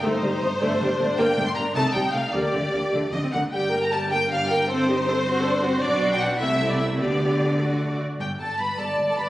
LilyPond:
<<
  \new Staff \with { instrumentName = "Violin section" } { \time 6/8 \key g \minor \tempo 4. = 103 c''2. | g''8. c'''16 bes''8 a''8 g''8 f''8 | d''2 ees''8 fis''8 | g''8. bes''16 a''8 g''8 f''8 g''8 |
c''2. | \key g \major d''8. g''16 fis''8 e''8. d''16 e''8 | d''2~ d''8 r8 | g''8 a''8 b''8 a''8. a''16 b''8 | }
  \new Staff \with { instrumentName = "Violin section" } { \time 6/8 \key g \minor c''2. | g''8. c'''16 bes''8 a''8 g''8 f''8 | d''2 ees''8 fis''8 | g''8. bes''16 a''8 g''8 f''8 g''8 |
c''2. | \key g \major d''8. g''16 fis''8 e''8. d''16 e''8 | d''2~ d''8 r8 | g'8 a'8 b'8 a'8. a'16 b'8 | }
  \new Staff \with { instrumentName = "Viola section" } { \time 6/8 \key g \minor << { ees'4. d'4.~ | d'4. ees'4. | g'4. a8. c'16 bes8 | g'8 bes'8 g'8 bes'8 g'8 bes'8 |
a'8 g'8 a'8 fis'8 a'8 fis'8 | \key g \major fis'4. e'4. | g'4. fis'4 r8 | r4. d''4. | } \\ { a8 g8 a8 a8 g8 a8 | bes8 a8 bes8 a8 g8 a8 | bes8 a8 bes8 r4. | g8 bes8 g8 bes8 g8 bes8 |
c'8 ees'8 c'8 c'8 d'8 c'8 | d'4. a4. | b4. a4 r8 | r2. | } >> }
  \new Staff \with { instrumentName = "Cello section" } { \clef bass \time 6/8 \key g \minor g,8 g,8 g,8 g,8 g,8 g,8 | g,8 g,8 g,8 c8 c8 c8 | d8 d8 d8 d8 d8 d8 | g,2.~ |
g,2. | \key g \major b,4. c4. | d2~ d8 r8 | g,8 g,8 g,8 g,8 g,8 g,8 | }
  \new Staff \with { instrumentName = "Double bass section" } { \clef bass \time 6/8 \key g \minor g,,8 g,,8 g,,8 g,,8 g,,8 g,,8 | g,,8 g,,8 g,,8 c,8 c,8 c,8 | d,8 d,8 d,8 d,8 d,8 d,8 | g,,2.~ |
g,,2. | \key g \major b,,4. c,4. | d,2~ d,8 r8 | g,,8 g,,8 g,,8 g,,8 g,,8 g,,8 | }
>>